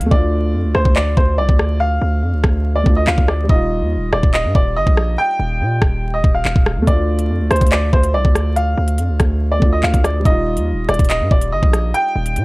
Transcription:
0.01 D#2, closed hi-hat
0.06 A3
0.11 D2 D4 D5, kick
0.17 F4
0.54 F2
0.64 D2
0.75 D2 C5, cross-stick
0.85 D2, kick
0.96 D5, clap
1.17 D2 C5, kick
1.38 C2 D5
1.49 D2, kick
1.59 cross-stick
1.80 F5
2.02 D2
2.23 F2
2.33 D2
2.44 D2, kick, cross-stick
2.76 D5
2.83 D2 A3 D4, kick
2.89 F4
2.96 D#5
3.07 D2 F5, clap
3.18 D2, kick
3.28 D5, cross-stick
3.44 G3
3.49 D#1 D#4 D#5, kick
3.55 F4
3.81 D#2
3.97 D#1
4.13 D#1 D5, cross-stick
4.23 D#1, kick
4.33 D#5, clap
4.44 G2
4.55 D#1 D5, kick
4.76 G1 D#5
4.87 A#1, kick
4.97 cross-stick
5.18 G5
5.39 D#1
5.61 A#2
5.82 D#1, kick, cross-stick
6.14 D#5
6.24 D#1, kick
6.35 F5
6.45 D#1, clap
6.56 D#1, kick
6.66 cross-stick
6.77 D#2
6.82 A3
6.87 D2 D4 D5, kick, closed hi-hat
6.93 F4
7.19 closed hi-hat
7.30 F2
7.40 D2
7.51 D2 C5, cross-stick, closed hi-hat
7.56 closed hi-hat
7.61 D2, kick, closed hi-hat
7.67 closed hi-hat
7.72 D5, clap, closed hi-hat
7.93 D2 C5, kick
8.03 closed hi-hat
8.14 C2 D5
8.25 D2, kick
8.35 cross-stick, closed hi-hat
8.56 F5, closed hi-hat
8.77 D2
8.88 closed hi-hat
8.98 F2, closed hi-hat
9.09 D2
9.20 D2, kick, cross-stick, closed hi-hat
9.52 D5
9.59 D2 A3 D4, kick
9.65 F4
9.73 D#5
9.83 D2 F5, clap
9.94 D2, kick, closed hi-hat
10.04 D5, cross-stick, closed hi-hat
10.20 G3
10.25 D#1 D#4 D#5, kick, closed hi-hat
10.31 F4
10.57 D#2, closed hi-hat
10.73 D#1
10.89 D#1 D5, cross-stick, closed hi-hat
10.94 closed hi-hat
10.99 D#1, kick, closed hi-hat
11.05 closed hi-hat
11.09 D#5, clap, closed hi-hat
11.20 G2
11.31 D#1 D5, kick
11.41 closed hi-hat
11.52 G1 D#5
11.63 A#1, kick
11.73 cross-stick, closed hi-hat
11.94 G5, closed hi-hat
12.16 D#1
12.26 closed hi-hat
12.36 A#2, closed hi-hat

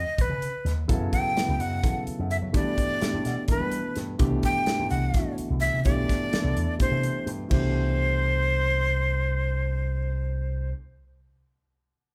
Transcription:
Already playing: D#5
0.18 B4, muted slap bass stroke, kick, closed hi-hat
0.29 C#3
0.42 closed hi-hat
0.65 D#2, snare, closed hi-hat
0.88 F#2 C#3 F#3 B3 E4 A4, kick, closed hi-hat
1.13 G5, kick, closed hi-hat
1.35 C#3 F#3 B3 E4 B4, snare, closed hi-hat
1.48 C#2
1.60 F#2 F#5, closed hi-hat
1.82 C#3 F#3 B3 E4 A4, kick, closed hi-hat
2.07 muted slap bass stroke, closed hi-hat
2.19 F#2
2.31 E5, closed hi-hat
2.42 F#3
2.52 G2 B2 E3 A3 D4 G4 D5, kick, closed hi-hat
2.78 kick, closed hi-hat
3.00 B2 E3 A3 D4 G4, muted slap bass stroke, snare, closed hi-hat
3.14 G2
3.25 B2, snare, closed hi-hat
3.48 B2 E3 A3 D4 A4 B4, muted slap bass stroke, kick, closed hi-hat
3.61 G3
3.72 closed hi-hat
3.96 G2, snare, closed hi-hat
4.18 C2 B2 E3 A3 D4 G4, kick, closed hi-hat
4.43 G5, kick, closed hi-hat
4.66 B2 E3 A3 D4 G4, snare, closed hi-hat
4.79 G2
4.90 C2 F#5, closed hi-hat
5.14 B2 E3 A3 D4 F#4, kick, snare, closed hi-hat
5.38 muted slap bass stroke, closed hi-hat
5.50 C2
5.60 E5, snare, closed hi-hat
5.74 C3
5.84 B1 B2 E3 A3 D4 G4 D5, kick, closed hi-hat
6.09 kick, snare, closed hi-hat
6.32 B2 E3 A3 D4 A4, muted slap bass stroke, snare, closed hi-hat
6.44 C2
6.56 E2, closed hi-hat
6.79 B2 E3 A3 D4 G4 C5, kick, closed hi-hat
6.92 C3
7.03 closed hi-hat
7.26 G2, closed hi-hat
7.47 C2 B2 E3 A3 C5, kick, crash
7.52 D4 G4

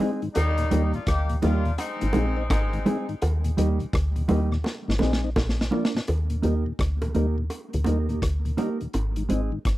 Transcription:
0.00 G#3 C4 D#4 G#4, closed hi-hat
0.22 G#2 D#3, closed hi-hat
0.35 D#2 G3 A#3 D#4, closed hi-hat, high bongo
0.58 D#2 A#2, closed hi-hat
0.71 D#2 G3 A#3 D#4 G4, closed hi-hat
0.93 D#2 A#2 A#3 D4 F4, closed hi-hat
1.07 D2 A#3 D#4 G4, kick, cross-stick, closed hi-hat
1.29 D#2 A#2, closed hi-hat
1.42 D#2 G3 A#3 D4 D#4 F4 G4, closed hi-hat, low bongo
1.65 D#2 A#2, closed hi-hat
1.78 G#3 C4 D#4, closed hi-hat, high bongo
2.01 G#1 G#2 D#3, closed hi-hat
2.13 A#1 G#3 C4 D#4 G#4, closed hi-hat, high bongo
2.37 C4 D#4
2.50 G#1 G#3 C4 D#4, kick, cross-stick, closed hi-hat, high bongo
2.73 G#2 D#3, closed hi-hat
2.86 G#3 C4 D#4 G#4, closed hi-hat, low bongo
3.09 G#2 D#3, closed hi-hat
3.22 D#2, closed hi-hat, high bongo
3.44 D#2 A#2, closed hi-hat
3.57 D#2 G3 A#3 D#4 G4, closed hi-hat
3.79 D#2 A#2, closed hi-hat
3.93 D2, kick, cross-stick, closed hi-hat
4.16 D#2 A#2, closed hi-hat
4.28 D#2 G3 A#3 D#4 G4, closed hi-hat, low bongo
4.52 D#2 A#2, cross-stick
4.64 snare, high bongo
4.88 G#1 G#2 D#3, snare
4.99 A#1 G#3 C4 D#4 G#4, snare, high bongo
5.13 snare
5.23 C4 D#4
5.36 A#1, kick, snare, high bongo
5.49 snare
5.59 A#2, snare
5.71 F3 A#3 D4 F4 A#4, low bongo
5.85 snare
5.94 A#2, snare
6.07 D#2, closed hi-hat, high bongo
6.30 D#2 A#2, closed hi-hat
6.42 D#2 G3 A#3 D#4 G4 A#4, closed hi-hat
6.66 D#2 A#2
6.79 D2, kick, cross-stick, closed hi-hat
7.02 D#2 A#2, closed hi-hat, high bongo
7.15 D#2 G3 A#3 D#4 G4 A#4, closed hi-hat
7.38 D#2 A#2
7.50 closed hi-hat, high bongo
7.73 D2 D#2 A#2, closed hi-hat
7.84 D#2 G3 A#3 D#4 G4 A#4, closed hi-hat, high bongo
8.09 D#2 A#2 A#3 D#4 G4 A#4, closed hi-hat
8.22 D2, kick, cross-stick, closed hi-hat
8.45 D#2 A#2, closed hi-hat
8.57 G3 A#3 D#4 G4 A#4, closed hi-hat, low bongo
8.80 D#2 A#2, muted clean electric guitar stroke, closed hi-hat
8.94 G#1, closed hi-hat, high bongo
9.16 G#2 D#3, closed hi-hat
9.29 G#1 G#3 C4 D#4 G#4, closed hi-hat
9.52 G#2 D#3
9.65 G1, kick, cross-stick, closed hi-hat

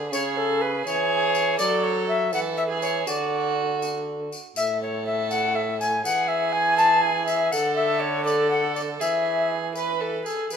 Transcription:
Already playing: D3 G#4
0.11 C#3 G#4 C#5, tambourine
0.37 A4
0.61 B4
0.85 E3 G#4 C#5, tambourine
1.35 tambourine
1.59 F#3 A4 D5, tambourine
1.84 C#5
2.08 E5
2.33 E3 A4 F#5, tambourine
2.57 E5
2.69 G#4
2.82 C#5, tambourine
3.07 D3 F#4 D5, tambourine
3.82 tambourine
4.32 tambourine
4.56 A2 A4 E5, tambourine
4.82 C#5
5.06 E5
5.30 F#5, tambourine
5.55 E5
5.80 G#5, tambourine
6.05 E3 G#4 F#5, tambourine
6.28 E5
6.53 G#5
6.77 A5, tambourine
7.02 G#5
7.26 E5, tambourine
7.52 D3 A4 F#5, tambourine
7.76 E5
8.00 C#5
8.25 A4 D5, tambourine
8.50 F#5
8.75 D5, tambourine
9.00 E3 G#4 E5, tambourine
9.75 B4, tambourine
10.01 A4
10.25 G#4 A4, tambourine
10.50 E3 G#4 B4, tambourine

